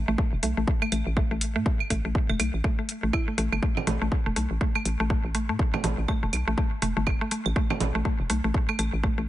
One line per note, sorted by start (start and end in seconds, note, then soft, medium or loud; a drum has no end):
0.08 0.16 A1 medium
0.08 0.11 A3 loud
0.18 0.22 A3 medium
0.18 kick loud
0.33 0.41 E1 medium
0.43 0.54 B1 medium
0.43 0.47 A3 loud
0.43 open hi-hat medium
0.57 0.65 A1 medium
0.57 0.60 A3 medium
0.67 kick loud
0.82 0.85 A3 loud
0.82 claves medium
0.92 1.04 A1 medium
0.92 0.96 A3 medium
0.92 open hi-hat medium
0.92 claves medium
1.07 1.25 A1 medium
1.17 1.20 A3 medium
1.17 kick loud
1.31 1.57 A1 medium
1.31 1.34 A3 medium
1.41 open hi-hat medium
1.56 1.64 A2 loud
1.56 1.58 A3 loud
1.66 1.70 A3 medium
1.66 kick loud
1.80 claves medium
1.90 2.02 A1 medium
1.90 1.94 A3 loud
1.90 kick medium
1.90 open hi-hat medium
2.05 2.13 A1 medium
2.05 2.07 A3 medium
2.15 kick loud
2.29 2.38 E1 medium
2.29 2.32 A3 loud
2.29 claves medium
2.40 2.51 B1 medium
2.40 2.43 A3 medium
2.40 open hi-hat medium
2.40 claves soft
2.54 2.62 A1 medium
2.64 2.68 A3 medium
2.64 kick loud
2.79 2.81 A3 medium
2.89 open hi-hat medium
3.03 3.11 A1 medium
3.03 3.10 A3 medium
3.13 3.17 E4 loud
3.13 kick loud
3.13 claves medium
3.28 3.34 A3 medium
3.38 3.49 A1 loud
3.38 3.44 A3 loud
3.38 open hi-hat medium
3.52 3.60 G1 medium
3.52 3.57 A3 medium
3.52 claves soft
3.63 3.66 A3 medium
3.63 kick loud
3.77 low conga medium
3.77 claves medium
3.87 3.99 A1 medium
3.87 3.91 A3 loud
3.87 open hi-hat medium
3.87 low conga medium
4.02 4.10 A1 medium
4.02 4.04 A3 medium
4.12 kick loud
4.26 4.34 E1 medium
4.26 4.29 A3 loud
4.36 4.48 B1 medium
4.36 4.40 A3 medium
4.36 open hi-hat medium
4.51 4.59 A1 medium
4.61 4.65 A3 medium
4.61 kick loud
4.75 4.78 A3 medium
4.75 claves medium
4.85 4.97 A1 medium
4.85 open hi-hat medium
5.00 5.19 A1 medium
5.00 5.03 A3 loud
5.10 5.14 A3 medium
5.10 kick loud
5.25 5.51 A1 medium
5.35 5.38 A3 medium
5.35 open hi-hat medium
5.49 5.57 A2 medium
5.49 5.52 A3 medium
5.59 kick loud
5.74 5.76 A3 loud
5.74 low conga medium
5.74 claves medium
5.84 5.95 A1 medium
5.84 5.88 A3 medium
5.84 open hi-hat medium
5.84 low conga medium
5.98 6.06 A1 medium
6.08 6.12 A3 loud
6.08 kick loud
6.08 claves medium
6.23 6.31 E1 medium
6.23 6.26 A3 medium
6.33 6.45 B1 medium
6.33 open hi-hat medium
6.33 claves soft
6.48 6.56 A1 medium
6.48 6.50 A3 loud
6.58 6.61 A3 medium
6.58 kick loud
6.82 6.94 E1 medium
6.82 6.86 A3 medium
6.82 open hi-hat medium
6.97 7.15 G1 loud
6.97 6.99 A3 medium
7.07 kick loud
7.07 claves medium
7.21 7.24 A3 loud
7.31 7.35 A3 medium
7.31 open hi-hat medium
7.46 7.54 A1 loud
7.46 claves medium
7.56 7.60 A3 medium
7.56 kick loud
7.70 7.73 A3 medium
7.70 low conga medium
7.70 claves medium
7.80 7.92 A1 medium
7.80 open hi-hat medium
7.80 low conga medium
7.95 8.03 A1 medium
7.95 7.98 A3 loud
8.05 8.09 A3 medium
8.05 kick loud
8.20 8.28 E1 medium
8.30 8.41 B1 medium
8.30 8.33 A3 loud
8.30 open hi-hat medium
8.44 8.52 A1 medium
8.44 8.47 A3 medium
8.54 kick loud
8.69 8.71 A3 loud
8.69 claves medium
8.79 8.90 A1 medium
8.79 8.83 A3 medium
8.79 open hi-hat medium
8.79 claves medium
8.93 9.12 A1 medium
9.03 9.07 A3 loud
9.03 kick loud
9.18 9.29 A1 medium
9.18 9.21 A3 medium